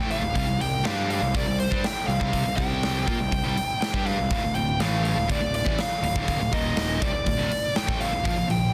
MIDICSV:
0, 0, Header, 1, 7, 480
1, 0, Start_track
1, 0, Key_signature, -1, "minor"
1, 0, Tempo, 493827
1, 343, Time_signature, 4, 2, 24, 8
1, 8490, End_track
2, 0, Start_track
2, 0, Title_t, "Lead electric guitar"
2, 0, Program_c, 0, 29
2, 0, Note_on_c, 0, 79, 94
2, 106, Note_off_c, 0, 79, 0
2, 110, Note_on_c, 0, 77, 104
2, 596, Note_off_c, 0, 77, 0
2, 600, Note_on_c, 0, 79, 90
2, 816, Note_off_c, 0, 79, 0
2, 834, Note_on_c, 0, 77, 98
2, 1063, Note_off_c, 0, 77, 0
2, 1075, Note_on_c, 0, 77, 80
2, 1317, Note_off_c, 0, 77, 0
2, 1321, Note_on_c, 0, 74, 87
2, 1550, Note_off_c, 0, 74, 0
2, 1554, Note_on_c, 0, 72, 82
2, 1797, Note_off_c, 0, 72, 0
2, 1798, Note_on_c, 0, 79, 96
2, 2010, Note_off_c, 0, 79, 0
2, 2014, Note_on_c, 0, 77, 99
2, 2492, Note_off_c, 0, 77, 0
2, 2496, Note_on_c, 0, 79, 86
2, 2969, Note_off_c, 0, 79, 0
2, 2981, Note_on_c, 0, 79, 84
2, 3692, Note_off_c, 0, 79, 0
2, 3704, Note_on_c, 0, 79, 105
2, 3946, Note_off_c, 0, 79, 0
2, 3950, Note_on_c, 0, 77, 95
2, 4422, Note_off_c, 0, 77, 0
2, 4426, Note_on_c, 0, 79, 76
2, 4649, Note_off_c, 0, 79, 0
2, 4672, Note_on_c, 0, 77, 98
2, 4893, Note_off_c, 0, 77, 0
2, 4904, Note_on_c, 0, 77, 74
2, 5128, Note_off_c, 0, 77, 0
2, 5165, Note_on_c, 0, 74, 86
2, 5380, Note_off_c, 0, 74, 0
2, 5398, Note_on_c, 0, 74, 80
2, 5639, Note_off_c, 0, 74, 0
2, 5640, Note_on_c, 0, 77, 91
2, 5864, Note_off_c, 0, 77, 0
2, 5875, Note_on_c, 0, 77, 101
2, 6317, Note_off_c, 0, 77, 0
2, 6354, Note_on_c, 0, 75, 92
2, 6818, Note_off_c, 0, 75, 0
2, 6822, Note_on_c, 0, 74, 75
2, 7542, Note_on_c, 0, 79, 106
2, 7564, Note_off_c, 0, 74, 0
2, 7784, Note_off_c, 0, 79, 0
2, 7787, Note_on_c, 0, 77, 106
2, 8231, Note_off_c, 0, 77, 0
2, 8270, Note_on_c, 0, 79, 95
2, 8489, Note_off_c, 0, 79, 0
2, 8490, End_track
3, 0, Start_track
3, 0, Title_t, "Distorted electric guitar"
3, 0, Program_c, 1, 30
3, 0, Note_on_c, 1, 45, 82
3, 0, Note_on_c, 1, 52, 86
3, 0, Note_on_c, 1, 57, 93
3, 198, Note_off_c, 1, 45, 0
3, 206, Note_off_c, 1, 52, 0
3, 210, Note_on_c, 1, 38, 57
3, 210, Note_on_c, 1, 45, 62
3, 213, Note_off_c, 1, 57, 0
3, 331, Note_off_c, 1, 38, 0
3, 335, Note_off_c, 1, 45, 0
3, 335, Note_on_c, 1, 48, 87
3, 339, Note_on_c, 1, 55, 101
3, 449, Note_off_c, 1, 48, 0
3, 454, Note_off_c, 1, 55, 0
3, 461, Note_on_c, 1, 48, 60
3, 467, Note_on_c, 1, 55, 71
3, 576, Note_off_c, 1, 48, 0
3, 577, Note_off_c, 1, 55, 0
3, 588, Note_on_c, 1, 48, 58
3, 589, Note_on_c, 1, 55, 62
3, 778, Note_off_c, 1, 48, 0
3, 778, Note_off_c, 1, 55, 0
3, 814, Note_on_c, 1, 55, 80
3, 822, Note_on_c, 1, 62, 95
3, 823, Note_on_c, 1, 67, 88
3, 1172, Note_off_c, 1, 55, 0
3, 1176, Note_off_c, 1, 62, 0
3, 1177, Note_off_c, 1, 67, 0
3, 1182, Note_on_c, 1, 48, 61
3, 1185, Note_on_c, 1, 55, 66
3, 1291, Note_off_c, 1, 48, 0
3, 1299, Note_off_c, 1, 55, 0
3, 1303, Note_on_c, 1, 48, 92
3, 1310, Note_on_c, 1, 55, 92
3, 1417, Note_off_c, 1, 48, 0
3, 1420, Note_off_c, 1, 55, 0
3, 1428, Note_on_c, 1, 48, 66
3, 1430, Note_on_c, 1, 55, 72
3, 1618, Note_off_c, 1, 48, 0
3, 1620, Note_off_c, 1, 55, 0
3, 1659, Note_on_c, 1, 55, 82
3, 1667, Note_on_c, 1, 62, 87
3, 1775, Note_off_c, 1, 55, 0
3, 1779, Note_off_c, 1, 62, 0
3, 2025, Note_on_c, 1, 48, 65
3, 2030, Note_on_c, 1, 55, 66
3, 2124, Note_off_c, 1, 48, 0
3, 2127, Note_off_c, 1, 55, 0
3, 2136, Note_on_c, 1, 48, 83
3, 2136, Note_on_c, 1, 60, 83
3, 2138, Note_on_c, 1, 55, 92
3, 2364, Note_off_c, 1, 48, 0
3, 2366, Note_off_c, 1, 55, 0
3, 2374, Note_off_c, 1, 60, 0
3, 2375, Note_on_c, 1, 48, 63
3, 2377, Note_on_c, 1, 55, 71
3, 2482, Note_off_c, 1, 48, 0
3, 2484, Note_off_c, 1, 55, 0
3, 2493, Note_on_c, 1, 48, 78
3, 2496, Note_on_c, 1, 55, 88
3, 2499, Note_on_c, 1, 60, 83
3, 2971, Note_off_c, 1, 60, 0
3, 2973, Note_off_c, 1, 48, 0
3, 2974, Note_off_c, 1, 55, 0
3, 2975, Note_on_c, 1, 58, 73
3, 2980, Note_on_c, 1, 65, 79
3, 3093, Note_off_c, 1, 58, 0
3, 3096, Note_off_c, 1, 65, 0
3, 3099, Note_on_c, 1, 48, 59
3, 3101, Note_on_c, 1, 55, 72
3, 3208, Note_off_c, 1, 48, 0
3, 3210, Note_off_c, 1, 55, 0
3, 3220, Note_on_c, 1, 48, 59
3, 3222, Note_on_c, 1, 55, 63
3, 3328, Note_off_c, 1, 48, 0
3, 3332, Note_off_c, 1, 55, 0
3, 3340, Note_on_c, 1, 48, 85
3, 3344, Note_on_c, 1, 55, 90
3, 3456, Note_off_c, 1, 48, 0
3, 3458, Note_off_c, 1, 55, 0
3, 3824, Note_on_c, 1, 55, 86
3, 3827, Note_on_c, 1, 62, 90
3, 3828, Note_on_c, 1, 67, 86
3, 4052, Note_off_c, 1, 55, 0
3, 4060, Note_off_c, 1, 62, 0
3, 4060, Note_off_c, 1, 67, 0
3, 4060, Note_on_c, 1, 48, 55
3, 4064, Note_on_c, 1, 55, 53
3, 4183, Note_off_c, 1, 48, 0
3, 4185, Note_off_c, 1, 55, 0
3, 4191, Note_on_c, 1, 38, 83
3, 4194, Note_on_c, 1, 45, 91
3, 4301, Note_off_c, 1, 45, 0
3, 4302, Note_off_c, 1, 38, 0
3, 4313, Note_on_c, 1, 45, 60
3, 4314, Note_on_c, 1, 38, 55
3, 4422, Note_off_c, 1, 38, 0
3, 4426, Note_off_c, 1, 45, 0
3, 4433, Note_on_c, 1, 38, 60
3, 4437, Note_on_c, 1, 45, 65
3, 4622, Note_off_c, 1, 38, 0
3, 4624, Note_off_c, 1, 45, 0
3, 4667, Note_on_c, 1, 45, 77
3, 4673, Note_on_c, 1, 52, 92
3, 4675, Note_on_c, 1, 57, 93
3, 5006, Note_off_c, 1, 45, 0
3, 5012, Note_on_c, 1, 38, 58
3, 5014, Note_off_c, 1, 52, 0
3, 5018, Note_on_c, 1, 45, 58
3, 5024, Note_off_c, 1, 57, 0
3, 5118, Note_off_c, 1, 38, 0
3, 5118, Note_off_c, 1, 45, 0
3, 5129, Note_on_c, 1, 38, 84
3, 5129, Note_on_c, 1, 45, 101
3, 5247, Note_off_c, 1, 38, 0
3, 5251, Note_off_c, 1, 45, 0
3, 5259, Note_on_c, 1, 38, 64
3, 5265, Note_on_c, 1, 45, 73
3, 5455, Note_off_c, 1, 38, 0
3, 5458, Note_off_c, 1, 45, 0
3, 5488, Note_on_c, 1, 45, 76
3, 5495, Note_on_c, 1, 52, 87
3, 5610, Note_off_c, 1, 45, 0
3, 5614, Note_off_c, 1, 52, 0
3, 5859, Note_on_c, 1, 38, 58
3, 5860, Note_on_c, 1, 45, 66
3, 5972, Note_off_c, 1, 38, 0
3, 5975, Note_off_c, 1, 45, 0
3, 5983, Note_on_c, 1, 38, 92
3, 5987, Note_on_c, 1, 45, 80
3, 5990, Note_on_c, 1, 50, 90
3, 6214, Note_off_c, 1, 38, 0
3, 6219, Note_off_c, 1, 45, 0
3, 6221, Note_off_c, 1, 50, 0
3, 6225, Note_on_c, 1, 38, 66
3, 6231, Note_on_c, 1, 45, 72
3, 6333, Note_off_c, 1, 38, 0
3, 6336, Note_on_c, 1, 39, 77
3, 6338, Note_off_c, 1, 45, 0
3, 6342, Note_on_c, 1, 46, 83
3, 6345, Note_on_c, 1, 51, 80
3, 6811, Note_off_c, 1, 39, 0
3, 6815, Note_on_c, 1, 48, 85
3, 6816, Note_off_c, 1, 46, 0
3, 6818, Note_off_c, 1, 51, 0
3, 6821, Note_on_c, 1, 55, 94
3, 6929, Note_off_c, 1, 48, 0
3, 6932, Note_off_c, 1, 55, 0
3, 6933, Note_on_c, 1, 38, 63
3, 6936, Note_on_c, 1, 45, 62
3, 7033, Note_off_c, 1, 38, 0
3, 7040, Note_off_c, 1, 45, 0
3, 7044, Note_on_c, 1, 38, 59
3, 7052, Note_on_c, 1, 45, 73
3, 7151, Note_off_c, 1, 38, 0
3, 7163, Note_off_c, 1, 45, 0
3, 7163, Note_on_c, 1, 38, 78
3, 7175, Note_on_c, 1, 45, 96
3, 7281, Note_off_c, 1, 38, 0
3, 7293, Note_off_c, 1, 45, 0
3, 7647, Note_on_c, 1, 45, 93
3, 7651, Note_on_c, 1, 52, 94
3, 7654, Note_on_c, 1, 57, 95
3, 7888, Note_off_c, 1, 45, 0
3, 7890, Note_off_c, 1, 52, 0
3, 7891, Note_off_c, 1, 57, 0
3, 7900, Note_on_c, 1, 45, 68
3, 7901, Note_on_c, 1, 38, 65
3, 8001, Note_off_c, 1, 38, 0
3, 8005, Note_on_c, 1, 46, 84
3, 8009, Note_off_c, 1, 45, 0
3, 8012, Note_on_c, 1, 53, 110
3, 8115, Note_off_c, 1, 46, 0
3, 8119, Note_off_c, 1, 53, 0
3, 8127, Note_on_c, 1, 46, 55
3, 8130, Note_on_c, 1, 53, 77
3, 8226, Note_off_c, 1, 46, 0
3, 8232, Note_off_c, 1, 53, 0
3, 8238, Note_on_c, 1, 46, 54
3, 8244, Note_on_c, 1, 53, 68
3, 8442, Note_off_c, 1, 46, 0
3, 8445, Note_off_c, 1, 53, 0
3, 8490, End_track
4, 0, Start_track
4, 0, Title_t, "Picked electric bass"
4, 0, Program_c, 2, 34
4, 0, Note_on_c, 2, 33, 93
4, 207, Note_off_c, 2, 33, 0
4, 218, Note_on_c, 2, 26, 72
4, 332, Note_off_c, 2, 26, 0
4, 342, Note_on_c, 2, 36, 82
4, 455, Note_off_c, 2, 36, 0
4, 460, Note_on_c, 2, 36, 77
4, 573, Note_off_c, 2, 36, 0
4, 583, Note_on_c, 2, 36, 80
4, 807, Note_off_c, 2, 36, 0
4, 818, Note_on_c, 2, 43, 96
4, 1156, Note_off_c, 2, 43, 0
4, 1186, Note_on_c, 2, 36, 72
4, 1297, Note_off_c, 2, 36, 0
4, 1310, Note_on_c, 2, 36, 89
4, 1419, Note_off_c, 2, 36, 0
4, 1430, Note_on_c, 2, 36, 79
4, 1651, Note_off_c, 2, 36, 0
4, 1668, Note_on_c, 2, 43, 96
4, 1775, Note_off_c, 2, 43, 0
4, 2025, Note_on_c, 2, 36, 74
4, 2137, Note_off_c, 2, 36, 0
4, 2150, Note_on_c, 2, 36, 84
4, 2371, Note_off_c, 2, 36, 0
4, 2392, Note_on_c, 2, 36, 77
4, 2501, Note_off_c, 2, 36, 0
4, 2506, Note_on_c, 2, 36, 99
4, 2953, Note_off_c, 2, 36, 0
4, 2990, Note_on_c, 2, 46, 82
4, 3100, Note_off_c, 2, 46, 0
4, 3122, Note_on_c, 2, 36, 77
4, 3219, Note_off_c, 2, 36, 0
4, 3225, Note_on_c, 2, 36, 75
4, 3337, Note_off_c, 2, 36, 0
4, 3361, Note_on_c, 2, 36, 94
4, 3466, Note_off_c, 2, 36, 0
4, 3827, Note_on_c, 2, 43, 85
4, 4050, Note_off_c, 2, 43, 0
4, 4084, Note_on_c, 2, 36, 67
4, 4181, Note_off_c, 2, 36, 0
4, 4187, Note_on_c, 2, 26, 79
4, 4298, Note_off_c, 2, 26, 0
4, 4313, Note_on_c, 2, 26, 72
4, 4417, Note_off_c, 2, 26, 0
4, 4423, Note_on_c, 2, 26, 79
4, 4648, Note_off_c, 2, 26, 0
4, 4665, Note_on_c, 2, 33, 93
4, 5001, Note_off_c, 2, 33, 0
4, 5026, Note_on_c, 2, 26, 79
4, 5138, Note_off_c, 2, 26, 0
4, 5145, Note_on_c, 2, 26, 94
4, 5258, Note_off_c, 2, 26, 0
4, 5266, Note_on_c, 2, 26, 74
4, 5490, Note_off_c, 2, 26, 0
4, 5502, Note_on_c, 2, 33, 96
4, 5610, Note_off_c, 2, 33, 0
4, 5854, Note_on_c, 2, 26, 77
4, 5971, Note_off_c, 2, 26, 0
4, 5983, Note_on_c, 2, 26, 87
4, 6208, Note_off_c, 2, 26, 0
4, 6222, Note_on_c, 2, 26, 81
4, 6335, Note_off_c, 2, 26, 0
4, 6342, Note_on_c, 2, 27, 101
4, 6790, Note_off_c, 2, 27, 0
4, 6824, Note_on_c, 2, 36, 90
4, 6924, Note_off_c, 2, 36, 0
4, 6930, Note_on_c, 2, 26, 76
4, 7049, Note_off_c, 2, 26, 0
4, 7066, Note_on_c, 2, 26, 77
4, 7171, Note_off_c, 2, 26, 0
4, 7176, Note_on_c, 2, 26, 101
4, 7284, Note_off_c, 2, 26, 0
4, 7664, Note_on_c, 2, 33, 94
4, 7887, Note_off_c, 2, 33, 0
4, 7898, Note_on_c, 2, 26, 69
4, 8012, Note_off_c, 2, 26, 0
4, 8023, Note_on_c, 2, 34, 85
4, 8135, Note_off_c, 2, 34, 0
4, 8144, Note_on_c, 2, 34, 77
4, 8255, Note_off_c, 2, 34, 0
4, 8260, Note_on_c, 2, 34, 77
4, 8484, Note_off_c, 2, 34, 0
4, 8490, End_track
5, 0, Start_track
5, 0, Title_t, "Muted distorted electric guitar strokes"
5, 1791, Note_on_c, 9, 29, 60
5, 1888, Note_off_c, 9, 29, 0
5, 3472, Note_on_c, 9, 29, 47
5, 3569, Note_off_c, 9, 29, 0
5, 5620, Note_on_c, 9, 29, 54
5, 5717, Note_off_c, 9, 29, 0
5, 7293, Note_on_c, 9, 29, 47
5, 7390, Note_off_c, 9, 29, 0
5, 8490, End_track
6, 0, Start_track
6, 0, Title_t, "Muted picked electric bass strokes"
6, 1781, Note_on_c, 9, 29, 35
6, 1878, Note_off_c, 9, 29, 0
6, 3487, Note_on_c, 9, 29, 37
6, 3584, Note_off_c, 9, 29, 0
6, 5616, Note_on_c, 9, 29, 37
6, 5713, Note_off_c, 9, 29, 0
6, 7290, Note_on_c, 9, 29, 43
6, 7387, Note_off_c, 9, 29, 0
6, 8490, End_track
7, 0, Start_track
7, 0, Title_t, "Drums"
7, 104, Note_on_c, 9, 46, 52
7, 201, Note_off_c, 9, 46, 0
7, 345, Note_on_c, 9, 36, 97
7, 349, Note_on_c, 9, 46, 65
7, 442, Note_off_c, 9, 36, 0
7, 447, Note_off_c, 9, 46, 0
7, 596, Note_on_c, 9, 46, 53
7, 694, Note_off_c, 9, 46, 0
7, 827, Note_on_c, 9, 46, 74
7, 829, Note_on_c, 9, 38, 115
7, 924, Note_off_c, 9, 46, 0
7, 926, Note_off_c, 9, 38, 0
7, 1073, Note_on_c, 9, 46, 54
7, 1170, Note_off_c, 9, 46, 0
7, 1308, Note_on_c, 9, 36, 93
7, 1311, Note_on_c, 9, 46, 74
7, 1406, Note_off_c, 9, 36, 0
7, 1408, Note_off_c, 9, 46, 0
7, 1554, Note_on_c, 9, 46, 57
7, 1651, Note_off_c, 9, 46, 0
7, 1670, Note_on_c, 9, 36, 93
7, 1767, Note_off_c, 9, 36, 0
7, 1790, Note_on_c, 9, 46, 68
7, 1792, Note_on_c, 9, 38, 103
7, 1887, Note_off_c, 9, 46, 0
7, 1889, Note_off_c, 9, 38, 0
7, 2038, Note_on_c, 9, 46, 52
7, 2135, Note_off_c, 9, 46, 0
7, 2148, Note_on_c, 9, 36, 95
7, 2245, Note_off_c, 9, 36, 0
7, 2268, Note_on_c, 9, 36, 83
7, 2268, Note_on_c, 9, 46, 68
7, 2365, Note_off_c, 9, 36, 0
7, 2365, Note_off_c, 9, 46, 0
7, 2507, Note_on_c, 9, 46, 53
7, 2508, Note_on_c, 9, 36, 93
7, 2604, Note_off_c, 9, 46, 0
7, 2606, Note_off_c, 9, 36, 0
7, 2753, Note_on_c, 9, 46, 76
7, 2755, Note_on_c, 9, 38, 100
7, 2850, Note_off_c, 9, 46, 0
7, 2852, Note_off_c, 9, 38, 0
7, 2990, Note_on_c, 9, 36, 93
7, 2995, Note_on_c, 9, 46, 50
7, 3087, Note_off_c, 9, 36, 0
7, 3093, Note_off_c, 9, 46, 0
7, 3229, Note_on_c, 9, 36, 87
7, 3235, Note_on_c, 9, 46, 64
7, 3327, Note_off_c, 9, 36, 0
7, 3332, Note_off_c, 9, 46, 0
7, 3475, Note_on_c, 9, 46, 53
7, 3572, Note_off_c, 9, 46, 0
7, 3714, Note_on_c, 9, 46, 64
7, 3716, Note_on_c, 9, 38, 108
7, 3811, Note_off_c, 9, 46, 0
7, 3813, Note_off_c, 9, 38, 0
7, 3829, Note_on_c, 9, 36, 83
7, 3926, Note_off_c, 9, 36, 0
7, 3951, Note_on_c, 9, 46, 49
7, 4048, Note_off_c, 9, 46, 0
7, 4185, Note_on_c, 9, 46, 68
7, 4186, Note_on_c, 9, 36, 92
7, 4282, Note_off_c, 9, 46, 0
7, 4284, Note_off_c, 9, 36, 0
7, 4422, Note_on_c, 9, 46, 46
7, 4519, Note_off_c, 9, 46, 0
7, 4667, Note_on_c, 9, 46, 70
7, 4669, Note_on_c, 9, 38, 102
7, 4765, Note_off_c, 9, 46, 0
7, 4766, Note_off_c, 9, 38, 0
7, 4909, Note_on_c, 9, 46, 53
7, 5007, Note_off_c, 9, 46, 0
7, 5147, Note_on_c, 9, 36, 97
7, 5150, Note_on_c, 9, 46, 68
7, 5244, Note_off_c, 9, 36, 0
7, 5247, Note_off_c, 9, 46, 0
7, 5386, Note_on_c, 9, 46, 55
7, 5483, Note_off_c, 9, 46, 0
7, 5505, Note_on_c, 9, 36, 96
7, 5602, Note_off_c, 9, 36, 0
7, 5622, Note_on_c, 9, 46, 65
7, 5624, Note_on_c, 9, 38, 93
7, 5720, Note_off_c, 9, 46, 0
7, 5722, Note_off_c, 9, 38, 0
7, 5866, Note_on_c, 9, 46, 55
7, 5963, Note_off_c, 9, 46, 0
7, 5985, Note_on_c, 9, 36, 97
7, 6082, Note_off_c, 9, 36, 0
7, 6105, Note_on_c, 9, 36, 92
7, 6106, Note_on_c, 9, 46, 68
7, 6202, Note_off_c, 9, 36, 0
7, 6204, Note_off_c, 9, 46, 0
7, 6345, Note_on_c, 9, 36, 96
7, 6347, Note_on_c, 9, 46, 57
7, 6442, Note_off_c, 9, 36, 0
7, 6444, Note_off_c, 9, 46, 0
7, 6580, Note_on_c, 9, 46, 84
7, 6582, Note_on_c, 9, 38, 110
7, 6677, Note_off_c, 9, 46, 0
7, 6679, Note_off_c, 9, 38, 0
7, 6824, Note_on_c, 9, 36, 97
7, 6828, Note_on_c, 9, 46, 50
7, 6921, Note_off_c, 9, 36, 0
7, 6926, Note_off_c, 9, 46, 0
7, 7060, Note_on_c, 9, 46, 74
7, 7063, Note_on_c, 9, 36, 79
7, 7157, Note_off_c, 9, 46, 0
7, 7160, Note_off_c, 9, 36, 0
7, 7305, Note_on_c, 9, 46, 60
7, 7402, Note_off_c, 9, 46, 0
7, 7542, Note_on_c, 9, 46, 69
7, 7544, Note_on_c, 9, 38, 101
7, 7639, Note_off_c, 9, 46, 0
7, 7641, Note_off_c, 9, 38, 0
7, 7664, Note_on_c, 9, 36, 104
7, 7761, Note_off_c, 9, 36, 0
7, 7784, Note_on_c, 9, 46, 51
7, 7881, Note_off_c, 9, 46, 0
7, 8022, Note_on_c, 9, 36, 95
7, 8026, Note_on_c, 9, 46, 70
7, 8119, Note_off_c, 9, 36, 0
7, 8123, Note_off_c, 9, 46, 0
7, 8262, Note_on_c, 9, 46, 48
7, 8360, Note_off_c, 9, 46, 0
7, 8490, End_track
0, 0, End_of_file